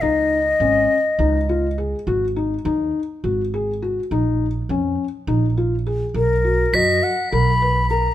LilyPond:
<<
  \new Staff \with { instrumentName = "Crotales" } { \time 7/8 \key b \lydian \tempo 4 = 103 r2. r8 | r2. r8 | r2. r8 | r4 b'''4. r4 | }
  \new Staff \with { instrumentName = "Flute" } { \time 7/8 \key b \lydian dis''2. r8 | r2. r8 | r2. r8 | ais'4 dis''8 fis''8 b''4 ais''8 | }
  \new Staff \with { instrumentName = "Felt piano" } { \time 7/8 \key b \lydian dis'4 cis'4 dis'8 eis'8 gis'8 | fis'8 dis'8 dis'4 fis'8 gis'8 fis'8 | dis'4 cis'4 dis'8 eis'8 gis'8 | ais'8 fis'8 fis'4 ais'8 b'8 ais'8 | }
  \new Staff \with { instrumentName = "Upright bass" } { \clef bass \time 7/8 \key b \lydian cis,4 gis,,8 r8 cis,4. | gis,,4 dis,8 r8 gis,,4. | ais,,4 eis,8 r8 ais,,4. | b,,4 fis,8 r8 b,,4. | }
>>